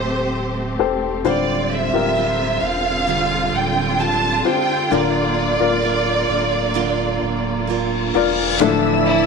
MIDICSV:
0, 0, Header, 1, 8, 480
1, 0, Start_track
1, 0, Tempo, 916031
1, 658, Time_signature, 4, 2, 24, 8
1, 4853, End_track
2, 0, Start_track
2, 0, Title_t, "Violin section"
2, 0, Program_c, 0, 48
2, 0, Note_on_c, 0, 72, 72
2, 424, Note_off_c, 0, 72, 0
2, 667, Note_on_c, 0, 74, 77
2, 885, Note_off_c, 0, 74, 0
2, 900, Note_on_c, 0, 76, 80
2, 1375, Note_off_c, 0, 76, 0
2, 1375, Note_on_c, 0, 77, 90
2, 1854, Note_off_c, 0, 77, 0
2, 1860, Note_on_c, 0, 79, 84
2, 2097, Note_off_c, 0, 79, 0
2, 2097, Note_on_c, 0, 81, 94
2, 2336, Note_off_c, 0, 81, 0
2, 2341, Note_on_c, 0, 79, 96
2, 2579, Note_off_c, 0, 79, 0
2, 2583, Note_on_c, 0, 74, 86
2, 4029, Note_off_c, 0, 74, 0
2, 4752, Note_on_c, 0, 64, 96
2, 4853, Note_off_c, 0, 64, 0
2, 4853, End_track
3, 0, Start_track
3, 0, Title_t, "Grand piano"
3, 0, Program_c, 1, 0
3, 0, Control_c, 1, 64, 127
3, 0, Note_on_c, 1, 67, 59
3, 0, Note_on_c, 1, 69, 60
3, 415, Note_off_c, 1, 67, 0
3, 415, Note_on_c, 1, 67, 72
3, 417, Note_off_c, 1, 69, 0
3, 417, Note_on_c, 1, 69, 64
3, 420, Note_on_c, 1, 72, 76
3, 644, Note_off_c, 1, 67, 0
3, 644, Note_off_c, 1, 69, 0
3, 646, Note_off_c, 1, 72, 0
3, 651, Note_on_c, 1, 65, 70
3, 653, Note_on_c, 1, 67, 58
3, 654, Note_on_c, 1, 50, 62
3, 657, Note_on_c, 1, 72, 80
3, 664, Control_c, 1, 64, 0
3, 747, Control_c, 1, 64, 127
3, 995, Note_off_c, 1, 65, 0
3, 996, Note_off_c, 1, 67, 0
3, 998, Note_off_c, 1, 72, 0
3, 1013, Note_on_c, 1, 65, 69
3, 1015, Note_on_c, 1, 67, 65
3, 1019, Note_on_c, 1, 70, 75
3, 1351, Note_off_c, 1, 50, 0
3, 1924, Note_off_c, 1, 65, 0
3, 1925, Note_off_c, 1, 67, 0
3, 1927, Note_off_c, 1, 70, 0
3, 2329, Note_on_c, 1, 65, 62
3, 2332, Note_on_c, 1, 67, 58
3, 2335, Note_on_c, 1, 72, 71
3, 2561, Note_off_c, 1, 65, 0
3, 2562, Note_off_c, 1, 67, 0
3, 2563, Note_off_c, 1, 72, 0
3, 2571, Note_on_c, 1, 65, 70
3, 2573, Note_on_c, 1, 70, 66
3, 2575, Note_on_c, 1, 50, 67
3, 2577, Note_on_c, 1, 74, 81
3, 2581, Control_c, 1, 64, 0
3, 2680, Control_c, 1, 64, 127
3, 2916, Note_off_c, 1, 65, 0
3, 2917, Note_off_c, 1, 70, 0
3, 2919, Note_off_c, 1, 74, 0
3, 2935, Note_on_c, 1, 65, 75
3, 2937, Note_on_c, 1, 70, 67
3, 2939, Note_on_c, 1, 74, 74
3, 3275, Note_off_c, 1, 50, 0
3, 3854, Note_off_c, 1, 65, 0
3, 3855, Note_off_c, 1, 70, 0
3, 3856, Note_off_c, 1, 74, 0
3, 4269, Note_on_c, 1, 65, 83
3, 4272, Note_on_c, 1, 70, 74
3, 4274, Note_on_c, 1, 74, 84
3, 4497, Note_off_c, 1, 65, 0
3, 4498, Note_off_c, 1, 70, 0
3, 4499, Note_off_c, 1, 74, 0
3, 4507, Note_on_c, 1, 62, 96
3, 4509, Note_on_c, 1, 64, 93
3, 4512, Note_on_c, 1, 45, 83
3, 4512, Note_on_c, 1, 53, 84
3, 4514, Note_on_c, 1, 69, 110
3, 4516, Control_c, 1, 64, 0
3, 4617, Control_c, 1, 64, 127
3, 4853, Note_off_c, 1, 45, 0
3, 4853, Note_off_c, 1, 53, 0
3, 4853, Note_off_c, 1, 62, 0
3, 4853, Note_off_c, 1, 64, 0
3, 4853, Note_off_c, 1, 69, 0
3, 4853, End_track
4, 0, Start_track
4, 0, Title_t, "String section"
4, 0, Program_c, 2, 48
4, 0, Note_on_c, 2, 57, 64
4, 0, Note_on_c, 2, 60, 60
4, 0, Note_on_c, 2, 67, 67
4, 641, Note_off_c, 2, 57, 0
4, 643, Note_off_c, 2, 67, 0
4, 661, Note_on_c, 2, 65, 81
4, 663, Note_on_c, 2, 50, 71
4, 2557, Note_off_c, 2, 60, 0
4, 2577, Note_on_c, 2, 58, 67
4, 4489, Note_off_c, 2, 65, 0
4, 4490, Note_off_c, 2, 58, 0
4, 4491, Note_off_c, 2, 50, 0
4, 4509, Note_on_c, 2, 74, 79
4, 4509, Note_on_c, 2, 76, 74
4, 4509, Note_on_c, 2, 88, 90
4, 4853, Note_off_c, 2, 74, 0
4, 4853, Note_off_c, 2, 76, 0
4, 4853, Note_off_c, 2, 88, 0
4, 4853, End_track
5, 0, Start_track
5, 0, Title_t, "Steel-string acoustic guitar"
5, 0, Program_c, 3, 25
5, 653, Note_on_c, 3, 50, 66
5, 657, Note_on_c, 3, 55, 67
5, 659, Note_on_c, 3, 60, 71
5, 662, Note_on_c, 3, 65, 77
5, 664, Note_on_c, 3, 72, 86
5, 1122, Note_off_c, 3, 55, 0
5, 1129, Note_off_c, 3, 60, 0
5, 1129, Note_on_c, 3, 55, 59
5, 1135, Note_on_c, 3, 60, 53
5, 1138, Note_off_c, 3, 65, 0
5, 1138, Note_off_c, 3, 72, 0
5, 1141, Note_on_c, 3, 65, 59
5, 1145, Note_on_c, 3, 72, 52
5, 1151, Note_off_c, 3, 50, 0
5, 1361, Note_off_c, 3, 72, 0
5, 1368, Note_on_c, 3, 72, 43
5, 1370, Note_off_c, 3, 65, 0
5, 1371, Note_off_c, 3, 55, 0
5, 1374, Note_off_c, 3, 60, 0
5, 1376, Note_on_c, 3, 65, 42
5, 1385, Note_on_c, 3, 60, 33
5, 1608, Note_off_c, 3, 60, 0
5, 1608, Note_on_c, 3, 50, 71
5, 1610, Note_off_c, 3, 65, 0
5, 1610, Note_off_c, 3, 72, 0
5, 1611, Note_on_c, 3, 55, 62
5, 1614, Note_on_c, 3, 60, 69
5, 1616, Note_on_c, 3, 65, 79
5, 1619, Note_on_c, 3, 72, 73
5, 2083, Note_off_c, 3, 55, 0
5, 2089, Note_off_c, 3, 60, 0
5, 2089, Note_on_c, 3, 55, 55
5, 2095, Note_on_c, 3, 60, 61
5, 2096, Note_off_c, 3, 72, 0
5, 2098, Note_off_c, 3, 65, 0
5, 2100, Note_on_c, 3, 65, 58
5, 2105, Note_on_c, 3, 72, 68
5, 2111, Note_off_c, 3, 50, 0
5, 2322, Note_off_c, 3, 72, 0
5, 2329, Note_on_c, 3, 72, 44
5, 2332, Note_off_c, 3, 55, 0
5, 2332, Note_off_c, 3, 65, 0
5, 2335, Note_off_c, 3, 60, 0
5, 2339, Note_on_c, 3, 65, 48
5, 2346, Note_on_c, 3, 60, 42
5, 2570, Note_on_c, 3, 50, 68
5, 2572, Note_off_c, 3, 72, 0
5, 2573, Note_off_c, 3, 65, 0
5, 2574, Note_on_c, 3, 58, 68
5, 2575, Note_off_c, 3, 60, 0
5, 2577, Note_on_c, 3, 62, 75
5, 2579, Note_on_c, 3, 65, 73
5, 2582, Note_on_c, 3, 70, 89
5, 3044, Note_off_c, 3, 58, 0
5, 3051, Note_on_c, 3, 58, 54
5, 3055, Note_off_c, 3, 62, 0
5, 3057, Note_on_c, 3, 62, 51
5, 3059, Note_off_c, 3, 70, 0
5, 3060, Note_off_c, 3, 65, 0
5, 3062, Note_on_c, 3, 65, 55
5, 3067, Note_on_c, 3, 70, 61
5, 3284, Note_off_c, 3, 70, 0
5, 3290, Note_on_c, 3, 70, 47
5, 3293, Note_off_c, 3, 58, 0
5, 3293, Note_off_c, 3, 65, 0
5, 3296, Note_off_c, 3, 62, 0
5, 3300, Note_on_c, 3, 65, 49
5, 3307, Note_on_c, 3, 62, 41
5, 3530, Note_off_c, 3, 50, 0
5, 3532, Note_off_c, 3, 62, 0
5, 3532, Note_on_c, 3, 50, 78
5, 3534, Note_off_c, 3, 65, 0
5, 3535, Note_off_c, 3, 70, 0
5, 3536, Note_on_c, 3, 58, 78
5, 3538, Note_on_c, 3, 62, 92
5, 3541, Note_on_c, 3, 65, 90
5, 3543, Note_on_c, 3, 70, 81
5, 4014, Note_off_c, 3, 58, 0
5, 4021, Note_on_c, 3, 58, 63
5, 4025, Note_off_c, 3, 62, 0
5, 4027, Note_on_c, 3, 62, 60
5, 4029, Note_off_c, 3, 70, 0
5, 4031, Note_off_c, 3, 65, 0
5, 4033, Note_on_c, 3, 65, 72
5, 4037, Note_on_c, 3, 70, 67
5, 4258, Note_off_c, 3, 70, 0
5, 4264, Note_on_c, 3, 70, 60
5, 4267, Note_off_c, 3, 58, 0
5, 4268, Note_off_c, 3, 65, 0
5, 4270, Note_off_c, 3, 62, 0
5, 4274, Note_on_c, 3, 65, 51
5, 4280, Note_on_c, 3, 62, 53
5, 4505, Note_off_c, 3, 50, 0
5, 4505, Note_on_c, 3, 50, 83
5, 4506, Note_off_c, 3, 62, 0
5, 4506, Note_off_c, 3, 70, 0
5, 4508, Note_on_c, 3, 53, 89
5, 4510, Note_on_c, 3, 57, 84
5, 4511, Note_off_c, 3, 65, 0
5, 4512, Note_on_c, 3, 62, 93
5, 4515, Note_on_c, 3, 64, 99
5, 4516, Note_on_c, 3, 69, 100
5, 4853, Note_off_c, 3, 50, 0
5, 4853, Note_off_c, 3, 53, 0
5, 4853, Note_off_c, 3, 57, 0
5, 4853, Note_off_c, 3, 62, 0
5, 4853, Note_off_c, 3, 64, 0
5, 4853, Note_off_c, 3, 69, 0
5, 4853, End_track
6, 0, Start_track
6, 0, Title_t, "French horn section"
6, 0, Program_c, 4, 60
6, 4513, Note_on_c, 4, 52, 89
6, 4514, Note_on_c, 4, 64, 97
6, 4853, Note_off_c, 4, 52, 0
6, 4853, Note_off_c, 4, 64, 0
6, 4853, End_track
7, 0, Start_track
7, 0, Title_t, "Sub bass"
7, 0, Program_c, 5, 38
7, 0, Note_on_c, 5, 26, 96
7, 398, Note_off_c, 5, 26, 0
7, 416, Note_on_c, 5, 28, 88
7, 640, Note_off_c, 5, 28, 0
7, 654, Note_on_c, 5, 26, 96
7, 993, Note_off_c, 5, 26, 0
7, 1011, Note_on_c, 5, 26, 90
7, 1350, Note_off_c, 5, 26, 0
7, 1372, Note_on_c, 5, 28, 79
7, 1832, Note_off_c, 5, 28, 0
7, 1852, Note_on_c, 5, 26, 96
7, 2313, Note_off_c, 5, 26, 0
7, 2574, Note_on_c, 5, 26, 101
7, 2914, Note_off_c, 5, 26, 0
7, 2932, Note_on_c, 5, 26, 91
7, 3273, Note_off_c, 5, 26, 0
7, 3294, Note_on_c, 5, 26, 85
7, 3759, Note_off_c, 5, 26, 0
7, 3780, Note_on_c, 5, 26, 96
7, 4248, Note_off_c, 5, 26, 0
7, 4268, Note_on_c, 5, 28, 88
7, 4492, Note_off_c, 5, 28, 0
7, 4508, Note_on_c, 5, 26, 113
7, 4845, Note_off_c, 5, 26, 0
7, 4853, End_track
8, 0, Start_track
8, 0, Title_t, "Reverse cymbal"
8, 0, Program_c, 6, 119
8, 3538, Note_on_c, 6, 60, 70
8, 4509, Note_off_c, 6, 60, 0
8, 4853, End_track
0, 0, End_of_file